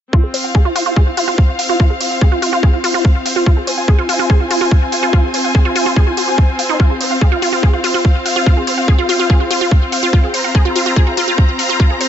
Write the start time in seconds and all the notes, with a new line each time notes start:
0.13 C4 F4, kick
0.24 F4 G#4
0.34 C5 F5, open hi-hat
0.44 F5
0.55 G#4, kick
0.65 F4 C5
0.76 F4, open hi-hat
0.86 F4
0.96 G#4, kick
1.07 F4
1.17 F4, open hi-hat
1.28 F4
1.38 kick
1.59 F5, open hi-hat
1.69 F4
1.80 F4, kick
1.90 G#4
2.01 C5, open hi-hat
2.11 F5
2.21 G#4, kick
2.32 F4
2.42 F4, open hi-hat
2.53 F4
2.63 G#4, kick
2.73 F4
2.84 F4, open hi-hat
2.94 F4
3.05 kick
3.26 F5, open hi-hat
3.36 F4
3.46 F4, kick
3.57 G#4
3.67 C5 G#5, open hi-hat
3.78 F5
3.88 G#4, kick
3.98 F4
4.09 F4, open hi-hat
4.19 F4
4.30 G#4, kick
4.40 F4
4.51 F4, open hi-hat
4.61 F4
4.71 kick
4.92 F5, open hi-hat
5.03 F4
5.13 F4, kick
5.24 G#4
5.34 C5, open hi-hat
5.44 F5
5.55 G#4, kick
5.65 F4
5.76 F4, open hi-hat
5.86 F4
5.96 G#4, kick
6.07 F4
6.17 F#4, open hi-hat
6.28 F#4
6.38 kick
6.59 F5, open hi-hat
6.69 D#4
6.80 F4, kick
6.90 G#4
7.00 C5 F5, open hi-hat
7.11 F5
7.21 G#4, kick
7.32 F4
7.42 F4, open hi-hat
7.53 F4
7.63 G#4, kick
7.73 F4
7.84 F4, open hi-hat
7.94 F4
8.05 kick
8.26 F5, open hi-hat
8.36 F4
8.46 F4, kick
8.57 G#4
8.67 C5, open hi-hat
8.78 F5
8.88 G#4, kick
8.98 F4
9.09 F4, open hi-hat
9.19 F4
9.30 G#4, kick
9.40 F4
9.51 F4, open hi-hat
9.61 F4
9.71 kick
9.92 F5, open hi-hat
10.03 F4
10.13 F4, kick
10.24 G#4
10.34 C5 A#5, open hi-hat
10.44 F5
10.55 G#4, kick
10.65 F4
10.76 F4, open hi-hat
10.86 F4
10.96 G#4, kick
11.07 F4
11.17 F4, open hi-hat
11.28 F4
11.38 kick
11.59 F5, open hi-hat
11.69 F4
11.80 F4, kick
11.90 G#4
12.01 C5, open hi-hat